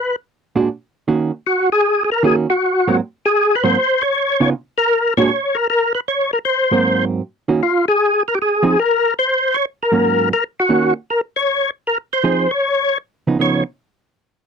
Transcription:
0.00 0.16 B4 medium
0.56 0.68 A#2 medium
0.56 0.68 G#3 medium
0.56 0.68 D4 medium
0.56 0.68 F#4 medium
1.08 1.30 D#3 medium
1.08 1.30 A#3 medium
1.08 1.30 C#4 medium
1.08 1.31 F#4 medium
1.47 1.70 F#4 medium
1.72 2.03 G#4 loud
2.04 2.10 G#4 medium
2.12 2.23 A#4 medium
2.23 2.46 D#3 medium
2.23 2.46 A#3 medium
2.23 2.46 C#4 medium
2.23 2.46 F#4 medium
2.23 2.36 G#4 medium
2.50 2.97 F#4 medium
2.88 2.99 G#2 medium
2.88 2.99 F#3 medium
2.88 2.99 A#3 medium
2.88 2.99 C4 medium
3.26 3.55 G#4 loud
3.55 3.64 B4 medium
3.64 3.75 G#2 medium
3.64 3.76 F#3 medium
3.64 3.76 A#3 medium
3.64 3.76 C4 medium
3.64 4.03 C5 loud
4.02 4.50 C#5 loud
4.40 4.52 C#3 medium
4.40 4.52 B3 medium
4.40 4.52 D#4 medium
4.40 4.52 F4 medium
4.78 5.14 A#4 loud
5.17 5.29 A#2 medium
5.17 5.30 G#3 medium
5.17 5.30 D4 medium
5.17 5.30 F#4 medium
5.17 5.57 C#5 medium
5.55 5.67 A#4 medium
5.70 5.93 A#4 medium
5.95 6.00 B4 medium
6.08 6.31 C#5 medium
6.33 6.39 A#4 medium
6.45 7.05 C5 medium
6.71 7.20 G#2 medium
6.71 7.20 F#3 medium
6.71 7.21 A#3 medium
6.71 7.21 C4 medium
7.48 7.60 D#3 medium
7.48 7.60 A#3 medium
7.48 7.60 C#4 medium
7.48 7.61 F#4 medium
7.63 7.85 F4 medium
7.88 8.23 G#4 loud
8.28 8.34 A#4 medium
8.35 8.39 G4 medium
8.42 8.80 G#4 medium
8.63 8.75 F3 medium
8.63 8.75 C4 medium
8.63 8.75 D#4 medium
8.63 8.76 G#4 medium
8.79 9.14 A#4 loud
9.19 9.57 C5 loud
9.54 9.65 C#5 loud
9.83 10.29 A#4 medium
9.92 10.30 G#2 medium
9.92 10.31 F#3 medium
9.92 10.31 A#3 medium
9.92 10.31 C#4 medium
10.33 10.44 A#4 loud
10.60 10.94 F#4 medium
10.69 10.92 D#3 medium
10.69 10.92 A#3 medium
10.69 10.92 C#4 medium
10.69 10.92 F#4 medium
11.10 11.21 A#4 medium
11.36 11.70 C#5 medium
11.87 11.98 A#4 medium
12.13 12.51 C5 medium
12.24 12.46 F3 medium
12.24 12.46 C4 medium
12.24 12.46 D#4 medium
12.24 12.46 G#4 medium
12.51 12.98 C#5 medium
13.27 13.38 C#3 soft
13.27 13.38 F3 medium
13.27 13.38 B3 medium
13.27 13.39 D#4 medium
13.39 13.62 C#3 medium
13.39 13.62 F3 medium
13.39 13.62 B3 medium
13.39 13.62 D#4 medium
13.39 13.64 C#5 medium

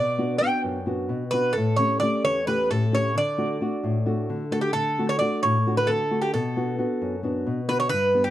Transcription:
0.00 0.40 B2 medium
0.00 0.37 D5 medium
0.18 0.40 B3 medium
0.18 0.41 D4 soft
0.18 0.41 F#4 medium
0.38 0.78 B3 soft
0.38 0.78 D4 soft
0.38 0.78 F#4 medium
0.38 0.61 G5 medium
0.64 1.08 F#2 medium
0.86 1.23 B3 medium
0.86 1.23 D4 soft
0.86 1.23 F#4 medium
1.09 1.54 B2 medium
1.31 1.51 B3 soft
1.31 1.51 D4 soft
1.31 1.51 F#4 soft
1.31 1.53 B4 loud
1.53 1.75 A4 medium
1.57 2.00 A2 medium
1.76 2.01 A3 medium
1.76 2.01 C#4 soft
1.76 2.01 G4 medium
1.76 1.99 C#5 medium
2.00 2.38 A3 soft
2.00 2.39 C#4 soft
2.00 2.38 G4 medium
2.00 2.24 D5 loud
2.25 2.69 E2 medium
2.25 2.46 C#5 loud
2.47 2.84 A3 medium
2.47 2.84 C#4 soft
2.47 2.84 G4 medium
2.47 2.68 B4 medium
2.70 3.14 A2 medium
2.70 2.94 A4 medium
2.91 3.10 A3 soft
2.91 3.10 C#4 soft
2.91 3.11 G4 soft
2.91 3.15 C#5 medium
3.15 3.59 D3 medium
3.15 4.49 D5 loud
3.38 3.59 A3 medium
3.38 3.60 D4 soft
3.38 3.60 F#4 medium
3.61 3.97 A3 soft
3.61 3.98 D4 soft
3.61 3.98 F#4 medium
3.84 4.28 A2 medium
4.06 4.43 A3 medium
4.06 4.42 D4 soft
4.06 4.43 F#4 medium
4.30 4.73 D3 medium
4.51 4.70 A3 soft
4.51 4.70 D4 soft
4.51 4.70 F#4 soft
4.51 4.61 A4 medium
4.61 4.73 G4 medium
4.73 5.19 D3 medium
4.73 5.09 A4 loud
4.98 5.19 A3 soft
4.98 5.20 D4 soft
4.98 5.20 F#4 medium
5.09 5.18 C#5 medium
5.19 5.56 A3 soft
5.19 5.57 D4 soft
5.19 5.57 F#4 medium
5.19 5.40 D5 medium
5.43 5.87 A2 medium
5.43 5.74 C#5 loud
5.67 6.02 A3 medium
5.67 6.02 D4 soft
5.67 6.03 F#4 medium
5.77 5.89 B4 medium
5.87 6.33 D3 medium
5.87 6.21 A4 medium
6.11 6.29 A3 soft
6.11 6.29 D4 soft
6.11 6.29 F#4 soft
6.22 6.32 G4 medium
6.34 6.78 B2 medium
6.34 7.20 A4 medium
6.56 6.77 B3 soft
6.56 6.77 D4 soft
6.56 6.78 F#4 medium
6.78 7.15 B3 soft
6.78 7.15 D4 soft
6.78 7.15 F#4 medium
7.01 7.45 F#2 medium
7.23 7.60 B3 medium
7.23 7.60 D4 medium
7.23 7.60 F#4 medium
7.47 7.91 B2 medium
7.68 7.87 B3 soft
7.68 7.87 D4 soft
7.68 7.87 F#4 medium
7.68 7.79 B4 loud
7.80 7.89 C#5 loud
7.89 8.30 G2 medium
7.89 8.22 B4 loud
8.14 8.30 G3 medium
8.14 8.30 B3 soft
8.14 8.30 D4 medium
8.24 8.30 G4 medium

